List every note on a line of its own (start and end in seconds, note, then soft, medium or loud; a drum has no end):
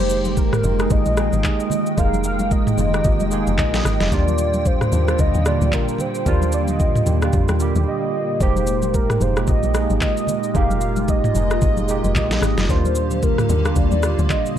0.00 0.60 F1 loud
0.00 4.08 D#3 medium
0.00 0.49 G#3 loud
0.00 4.08 G#3 medium
0.00 0.50 A#3 loud
0.00 12.65 A#3 medium
0.00 0.50 D#4 medium
0.00 0.50 G4 loud
0.00 0.40 C5 loud
0.00 10.51 G5 medium
0.10 shaker loud
0.25 high conga medium
0.25 shaker medium
0.37 0.93 A#4 loud
0.37 kick loud
0.37 shaker medium
0.53 cross-stick medium
0.53 mid tom medium
0.53 shaker medium
0.63 0.88 F1 loud
0.63 0.76 G#3 medium
0.63 0.76 A#3 medium
0.63 0.77 D#4 medium
0.63 0.77 F4 medium
0.63 high conga medium
0.63 low conga medium
0.63 shaker medium
0.79 1.10 G#3 medium
0.79 1.11 A#3 medium
0.79 1.11 D#4 medium
0.79 1.12 G#4 medium
0.79 cross-stick loud
0.79 shaker medium
0.90 1.04 G#1 loud
0.90 1.45 D#5 loud
0.90 kick loud
0.90 low conga medium
0.90 shaker medium
1.06 1.30 A#1 medium
1.06 high conga medium
1.06 shaker medium
1.17 1.83 G#3 medium
1.17 1.84 A#3 medium
1.17 1.84 D#4 medium
1.17 1.84 G#4 medium
1.17 cross-stick loud
1.17 shaker medium
1.33 1.43 G#1 medium
1.33 high conga medium
1.33 shaker medium
1.44 2.00 D#5 loud
1.44 kick medium
1.44 clap medium
1.44 low conga medium
1.44 shaker medium
1.60 shaker medium
1.70 low conga medium
1.70 shaker medium
1.86 shaker medium
1.97 2.74 F1 loud
1.97 2.63 G#3 loud
1.97 2.64 A#3 medium
1.97 2.64 D#4 medium
1.97 2.65 A#4 loud
1.97 2.25 F5 loud
1.97 kick loud
1.97 shaker medium
2.13 high conga medium
2.13 shaker medium
2.24 2.54 F5 loud
2.24 shaker loud
2.39 high conga medium
2.39 shaker medium
2.51 3.59 D#5 loud
2.51 kick loud
2.51 shaker medium
2.67 mid tom medium
2.67 shaker medium
2.78 3.02 F1 loud
2.78 2.90 G#3 medium
2.78 2.91 A#3 medium
2.78 2.91 D#4 medium
2.78 2.92 F4 medium
2.78 high conga medium
2.78 low conga medium
2.78 shaker medium
2.93 3.25 G#3 medium
2.93 3.25 A#3 medium
2.93 3.26 D#4 medium
2.93 3.26 G4 medium
2.93 cross-stick loud
2.93 shaker medium
3.04 3.22 G#1 loud
3.04 kick loud
3.04 low conga medium
3.04 shaker medium
3.20 3.44 F1 loud
3.20 high conga medium
3.20 shaker medium
3.31 3.97 G#3 medium
3.31 3.98 A#3 medium
3.31 3.98 D#4 medium
3.31 3.99 G#4 loud
3.31 shaker loud
3.47 3.57 F1 medium
3.47 high conga medium
3.47 shaker medium
3.58 3.82 A#1 loud
3.58 4.14 D#5 loud
3.58 kick medium
3.58 clap medium
3.58 low conga medium
3.58 shaker medium
3.74 snare medium
3.74 shaker medium
3.84 3.99 G#1 medium
3.84 cross-stick loud
3.84 low conga medium
3.84 shaker loud
4.00 4.11 F1 medium
4.00 snare medium
4.00 shaker medium
4.11 4.88 D#2 loud
4.11 14.59 A#2 medium
4.11 8.37 D3 medium
4.11 4.78 G3 loud
4.11 4.78 A#3 loud
4.11 4.79 D4 medium
4.11 4.79 F4 loud
4.11 4.68 D5 loud
4.11 kick loud
4.11 shaker medium
4.28 high conga medium
4.28 shaker medium
4.38 shaker loud
4.54 high conga medium
4.54 shaker medium
4.66 5.22 C5 loud
4.66 kick loud
4.66 shaker medium
4.81 cross-stick medium
4.81 mid tom medium
4.81 shaker medium
4.92 5.16 D#2 loud
4.92 5.04 G3 medium
4.92 5.05 A#3 medium
4.92 5.05 D4 medium
4.92 5.06 G4 medium
4.92 high conga medium
4.92 low conga medium
4.92 shaker medium
5.07 5.39 G3 medium
5.07 5.39 A#3 medium
5.07 5.40 D4 medium
5.07 5.40 F4 medium
5.07 cross-stick medium
5.07 shaker medium
5.19 5.33 D2 medium
5.19 5.48 D#5 loud
5.19 kick loud
5.19 low conga medium
5.19 shaker medium
5.34 5.58 D#2 medium
5.34 high conga medium
5.34 shaker medium
5.45 6.12 G3 medium
5.45 6.12 A#3 medium
5.45 6.13 D4 medium
5.45 6.13 F4 medium
5.45 5.75 D5 loud
5.45 cross-stick loud
5.45 shaker loud
5.61 5.72 D2 medium
5.61 high conga medium
5.61 shaker medium
5.72 6.02 A#4 loud
5.72 kick medium
5.72 clap medium
5.72 low conga medium
5.72 shaker medium
5.89 shaker medium
5.99 6.27 C5 medium
5.99 low conga medium
5.99 shaker loud
6.15 shaker medium
6.25 7.03 D#2 loud
6.25 6.92 G3 loud
6.25 6.92 A#3 medium
6.25 6.93 D4 medium
6.25 6.93 F4 loud
6.25 6.52 C5 loud
6.25 kick loud
6.25 shaker medium
6.42 high conga medium
6.42 shaker medium
6.52 6.61 D5 medium
6.52 shaker loud
6.68 7.19 D#5 medium
6.68 high conga medium
6.68 shaker medium
6.80 kick loud
6.80 shaker medium
6.95 mid tom medium
6.95 shaker medium
7.06 7.30 D#2 loud
7.06 7.19 G3 medium
7.06 7.19 A#3 medium
7.06 7.20 D4 medium
7.06 7.20 G4 medium
7.06 high conga medium
7.06 low conga medium
7.06 shaker medium
7.22 7.53 G3 medium
7.22 7.54 A#3 medium
7.22 7.54 D4 medium
7.22 7.55 F4 medium
7.22 cross-stick loud
7.22 shaker medium
7.33 7.47 F2 loud
7.33 kick loud
7.33 low conga medium
7.33 shaker medium
7.48 7.73 D#2 medium
7.48 cross-stick loud
7.48 high conga medium
7.48 shaker medium
7.60 8.27 D3 medium
7.60 8.26 G3 loud
7.60 8.26 A#3 medium
7.60 8.27 G4 loud
7.60 shaker medium
7.76 7.86 D#2 loud
7.76 high conga medium
7.76 shaker medium
7.88 8.43 D#5 loud
8.40 9.17 F1 loud
8.40 9.06 G#3 loud
8.40 12.65 G#3 medium
8.40 9.07 A#3 medium
8.40 9.07 D#4 loud
8.40 9.08 G4 loud
8.40 8.96 C5 loud
8.40 kick loud
8.40 shaker medium
8.56 high conga medium
8.56 shaker medium
8.67 shaker loud
8.82 high conga medium
8.82 shaker medium
8.94 9.23 A#4 loud
8.94 kick loud
8.94 shaker medium
9.10 cross-stick medium
9.10 mid tom medium
9.10 shaker medium
9.20 9.45 F1 loud
9.20 9.33 G#3 medium
9.20 9.34 A#3 medium
9.20 9.34 D#4 medium
9.20 9.34 F4 medium
9.20 9.48 C5 loud
9.20 high conga medium
9.20 low conga medium
9.20 shaker medium
9.36 9.67 G#3 medium
9.36 9.68 A#3 medium
9.36 9.68 D#4 medium
9.36 9.69 G4 medium
9.36 cross-stick loud
9.36 shaker soft
9.47 9.62 G#1 loud
9.47 9.98 D#5 loud
9.47 kick loud
9.47 low conga medium
9.47 shaker medium
9.63 9.87 A#1 loud
9.63 high conga medium
9.63 shaker medium
9.74 10.40 G#3 medium
9.74 10.41 A#3 medium
9.74 10.41 D#4 medium
9.74 10.41 G#4 medium
9.74 cross-stick loud
9.74 shaker medium
9.90 10.00 G#1 medium
9.90 high conga medium
9.90 shaker medium
10.01 10.57 D#5 loud
10.01 kick medium
10.01 clap medium
10.01 low conga medium
10.01 shaker medium
10.17 shaker medium
10.27 low conga medium
10.27 shaker loud
10.43 shaker medium
10.54 11.31 F1 loud
10.54 11.20 G#3 loud
10.54 11.21 A#3 medium
10.54 11.21 D#4 medium
10.54 12.67 F4 medium
10.54 11.22 G4 loud
10.54 11.09 F5 loud
10.54 kick loud
10.54 shaker medium
10.70 high conga medium
10.70 shaker medium
10.81 shaker loud
10.96 high conga medium
10.96 shaker medium
11.08 12.12 D#5 loud
11.08 kick loud
11.08 shaker medium
11.24 mid tom medium
11.24 shaker medium
11.34 11.59 F1 loud
11.34 11.47 G#3 medium
11.34 11.48 A#3 medium
11.34 11.48 D#4 medium
11.34 11.49 G#4 medium
11.34 high conga medium
11.34 low conga medium
11.34 shaker medium
11.50 11.82 G#3 medium
11.50 11.82 A#3 medium
11.50 11.83 D#4 medium
11.50 11.83 F4 medium
11.50 cross-stick medium
11.50 shaker medium
11.61 11.79 G#1 medium
11.61 kick loud
11.61 low conga medium
11.61 shaker medium
11.77 12.01 F1 loud
11.77 high conga medium
11.77 shaker medium
11.88 12.54 G#3 loud
11.88 12.55 A#3 medium
11.88 12.55 D#4 medium
11.88 12.56 G4 loud
11.88 shaker loud
12.04 12.14 F1 loud
12.04 high conga medium
12.04 shaker medium
12.15 12.39 A#1 loud
12.15 12.71 D#5 loud
12.15 kick medium
12.15 clap medium
12.15 low conga medium
12.15 shaker medium
12.31 snare medium
12.31 shaker medium
12.41 12.56 G#1 medium
12.41 cross-stick loud
12.41 low conga medium
12.41 shaker loud
12.58 12.68 F1 medium
12.58 snare medium
12.58 shaker medium
12.68 13.46 D#2 loud
12.68 14.59 D3 medium
12.68 13.35 G3 loud
12.68 14.59 A#3 medium
12.68 13.35 A#3 medium
12.68 13.36 D4 medium
12.68 13.36 F4 loud
12.68 14.59 G4 medium
12.68 13.25 C5 loud
12.68 kick loud
12.68 shaker medium
12.85 high conga medium
12.85 shaker medium
12.95 shaker loud
13.11 high conga medium
13.11 shaker medium
13.23 13.78 A#4 medium
13.23 kick loud
13.23 shaker medium
13.38 cross-stick medium
13.38 mid tom medium
13.38 shaker medium
13.49 13.73 D#2 loud
13.49 13.62 G3 medium
13.49 13.62 A#3 medium
13.49 13.62 D4 medium
13.49 13.63 G4 medium
13.49 high conga medium
13.49 low conga medium
13.49 shaker medium
13.64 13.96 G3 medium
13.64 13.96 A#3 medium
13.64 13.97 D4 medium
13.64 13.97 F4 medium
13.64 cross-stick loud
13.64 shaker medium
13.76 13.90 D2 medium
13.76 14.32 D5 loud
13.76 kick loud
13.76 low conga medium
13.76 shaker medium
13.91 14.16 D#2 medium
13.91 high conga medium
13.91 shaker medium
14.02 14.59 D3 medium
14.02 14.59 G3 medium
14.02 14.59 A#3 medium
14.02 14.59 F4 medium
14.02 cross-stick loud
14.02 shaker loud
14.19 14.29 D2 medium
14.19 high conga medium
14.19 shaker medium
14.30 14.59 D#5 loud
14.30 kick medium
14.30 clap medium
14.30 low conga medium
14.30 shaker medium
14.46 shaker medium